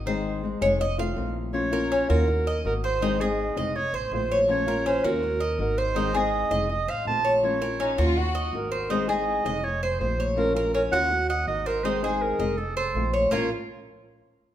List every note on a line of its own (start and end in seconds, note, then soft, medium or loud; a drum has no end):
0.00 0.56 G#1 medium
0.06 0.42 D#3 medium
0.06 0.42 G#3 medium
0.06 0.42 C4 medium
0.06 0.43 D#4 medium
0.06 0.43 G#4 medium
0.06 0.58 C5 medium
0.43 0.61 G#3 medium
0.43 0.61 C4 medium
0.43 0.61 D#4 medium
0.43 0.60 G#4 medium
0.61 1.13 F1 loud
0.61 0.80 G#3 medium
0.61 0.79 C4 medium
0.61 0.80 D#4 medium
0.61 0.79 G#4 medium
0.61 0.80 C#5 medium
0.80 0.99 D#5 medium
0.80 muted nylon-string guitar stroke medium
0.98 1.15 D#3 medium
0.98 1.15 A3 medium
0.98 1.15 C4 medium
0.98 1.16 F4 medium
0.98 1.33 F5 medium
1.16 2.03 A#1 medium
1.16 1.52 D#3 soft
1.16 1.53 A3 soft
1.16 1.53 C4 medium
1.16 1.53 F4 medium
1.53 1.71 F3 medium
1.53 1.71 A#3 medium
1.53 1.71 C#4 medium
1.53 1.70 F4 medium
1.53 2.05 C#5 medium
1.71 2.09 A#3 medium
1.71 2.09 C#4 medium
1.71 2.08 F4 medium
1.71 1.90 A#4 medium
1.92 2.09 C#4 medium
2.09 2.61 D#2 loud
2.09 2.27 A#3 medium
2.09 2.27 C#4 medium
2.09 2.27 F4 medium
2.09 2.45 F#4 medium
2.09 2.61 A#4 medium
2.27 muted nylon-string guitar stroke medium
2.47 2.82 D#5 medium
2.64 3.51 G#1 medium
2.64 3.00 D#3 soft
2.64 3.01 A#3 soft
2.64 3.01 D#4 medium
2.64 3.01 F#4 medium
2.64 2.74 A#4 medium
2.84 3.01 C5 medium
2.84 3.22 C5 loud
3.01 3.19 D#3 medium
3.01 3.19 G#3 medium
3.01 3.19 C4 medium
3.01 3.20 D#4 medium
3.01 3.19 D#4 medium
3.01 3.19 G#4 medium
3.20 3.57 G#3 medium
3.20 3.56 C4 medium
3.20 3.56 D#4 medium
3.20 3.55 G#4 medium
3.20 3.56 G#4 medium
3.20 3.57 D#5 medium
3.56 3.91 F1 medium
3.56 3.75 G#3 medium
3.56 3.74 C4 medium
3.56 3.74 D#4 medium
3.56 3.74 G#4 medium
3.56 3.93 D#5 medium
3.56 3.78 D#5 medium
3.75 3.97 C#5 loud
3.75 muted nylon-string guitar stroke medium
3.93 4.10 A1 medium
3.93 4.29 C5 medium
3.93 4.13 C5 medium
4.12 4.98 A#1 medium
4.12 4.47 D#3 medium
4.12 4.48 A3 medium
4.12 4.48 C4 medium
4.12 4.48 F4 medium
4.12 4.39 C5 medium
4.32 4.67 C#5 medium
4.48 4.66 F3 medium
4.48 4.66 A#3 medium
4.48 4.67 C#4 medium
4.48 4.65 F4 medium
4.48 4.84 C#5 loud
4.66 5.03 A#3 medium
4.66 5.03 C#4 medium
4.66 5.03 F4 medium
4.66 4.85 A#4 medium
4.86 5.04 C#4 medium
4.86 5.06 C5 medium
5.04 5.55 D#2 loud
5.04 5.22 A#3 medium
5.04 5.22 C#4 medium
5.04 5.22 F4 medium
5.04 5.40 F#4 medium
5.04 5.60 A#4 medium
5.23 muted nylon-string guitar stroke medium
5.40 5.76 D#5 medium
5.59 6.45 G#1 medium
5.59 5.93 D#3 medium
5.59 5.95 A#3 medium
5.59 5.95 D#4 medium
5.59 5.96 F#4 medium
5.59 5.80 A#4 medium
5.78 5.96 C5 medium
5.78 6.18 C5 loud
5.94 6.13 D#3 medium
5.94 6.13 G#3 medium
5.94 6.13 C4 medium
5.94 6.14 D#4 medium
5.94 6.13 D#4 medium
5.94 6.12 G#4 medium
6.14 6.51 G#3 medium
6.14 6.50 C4 medium
6.14 6.50 D#4 medium
6.14 6.49 G#4 medium
6.14 6.50 G#4 medium
6.14 6.70 D#5 loud
6.51 6.85 F1 loud
6.51 6.69 G#3 medium
6.51 6.69 C4 medium
6.51 6.69 D#4 medium
6.51 6.69 G#4 medium
6.51 6.87 D#5 medium
6.69 6.91 D#5 loud
6.69 muted nylon-string guitar stroke medium
6.88 7.05 A1 medium
6.88 7.24 C5 medium
6.88 7.07 F5 loud
7.05 7.92 A#1 medium
7.05 7.42 D#3 medium
7.05 7.42 A3 medium
7.05 7.43 C4 medium
7.05 7.43 F4 medium
7.05 7.33 A5 loud
7.25 7.60 C#5 medium
7.43 7.61 F3 medium
7.43 7.61 A#3 medium
7.43 7.61 C#4 medium
7.43 7.60 F4 medium
7.43 7.95 C#5 medium
7.61 7.98 A#3 medium
7.61 7.98 C#4 medium
7.61 7.97 F4 medium
7.61 7.79 A#4 medium
7.79 7.98 C#4 medium
7.79 7.97 D#4 medium
7.98 8.50 D#2 loud
7.98 8.16 A#3 medium
7.98 8.16 C#4 medium
7.98 8.15 F4 loud
7.98 8.16 F4 medium
7.98 8.34 F#4 medium
8.17 8.44 F#4 loud
8.17 muted nylon-string guitar stroke medium
8.35 8.71 D#5 medium
8.53 9.39 G#1 medium
8.53 8.89 D#3 soft
8.53 8.90 A#3 medium
8.53 8.90 D#4 medium
8.53 8.90 F#4 medium
8.53 8.93 A#4 medium
8.72 8.90 C5 medium
8.90 9.08 D#3 medium
8.90 9.08 G#3 medium
8.90 9.07 C4 medium
8.90 9.08 D#4 medium
8.90 9.07 D#4 medium
8.90 9.06 G#4 medium
8.90 9.11 C5 medium
9.08 9.45 G#3 medium
9.08 9.44 C4 medium
9.08 9.44 D#4 medium
9.08 9.43 G#4 medium
9.08 9.45 G#4 medium
9.08 9.66 D#5 loud
9.44 9.97 F1 medium
9.44 9.63 G#3 medium
9.44 9.62 C4 medium
9.44 9.63 D#4 medium
9.44 9.63 G#4 medium
9.44 9.81 D#5 medium
9.63 9.83 C#5 loud
9.63 muted nylon-string guitar stroke medium
9.83 10.18 C5 medium
9.83 10.00 C5 medium
10.00 10.87 A#1 medium
10.00 10.36 D#3 medium
10.00 10.36 A3 medium
10.00 10.37 C4 medium
10.00 10.36 F4 medium
10.00 10.26 C5 medium
10.20 10.55 C#5 medium
10.36 10.54 F3 medium
10.36 10.55 A#3 medium
10.36 10.54 C#4 medium
10.36 10.53 F4 medium
10.36 10.55 A#4 loud
10.55 10.91 A#3 medium
10.55 10.91 C#4 medium
10.55 10.90 F4 medium
10.55 10.73 A#4 medium
10.55 10.74 A#4 medium
10.74 10.92 C#4 medium
10.74 10.82 A#4 medium
10.92 11.44 D#2 loud
10.92 11.10 A#3 medium
10.92 11.10 C#4 medium
10.92 11.10 F4 medium
10.92 11.29 F#4 medium
10.92 11.27 F#5 loud
11.11 muted nylon-string guitar stroke medium
11.30 11.65 D#5 medium
11.30 11.47 F#5 loud
11.47 12.34 G#1 medium
11.47 11.82 D#3 soft
11.47 11.84 A#3 soft
11.47 11.84 D#4 medium
11.47 11.84 F#4 medium
11.47 11.68 D#5 loud
11.66 11.86 A#4 medium
11.66 11.84 C5 medium
11.84 12.02 D#3 medium
11.84 12.02 G#3 medium
11.84 12.02 C4 medium
11.84 12.02 D#4 medium
11.84 12.03 D#4 medium
11.84 12.02 G#4 medium
11.84 12.03 C5 loud
12.03 12.39 G#3 medium
12.03 12.39 C4 medium
12.03 12.38 D#4 medium
12.03 12.38 G#4 medium
12.03 12.39 G#4 medium
12.03 12.24 C5 medium
12.22 12.59 A#4 medium
12.39 12.91 F1 loud
12.39 12.57 G#3 medium
12.39 12.57 C4 medium
12.39 12.57 D#4 medium
12.39 12.57 G#4 medium
12.39 12.75 D#5 medium
12.57 12.76 A4 medium
12.57 muted nylon-string guitar stroke medium
12.77 13.11 A4 medium
12.77 13.12 C5 medium
12.95 13.27 A#1 medium
12.95 13.31 D#3 medium
12.95 13.31 A3 medium
12.95 13.32 C4 medium
12.95 13.31 F4 medium
13.13 13.31 C#5 medium
13.31 13.49 A#1 medium
13.31 13.46 A#2 medium
13.31 13.47 F3 medium
13.31 13.49 A#3 medium
13.31 13.47 A#3 medium
13.31 13.47 C#4 medium
13.31 13.49 F4 medium
13.31 13.47 F4 medium
13.31 13.49 A#4 medium
13.31 13.49 C#5 medium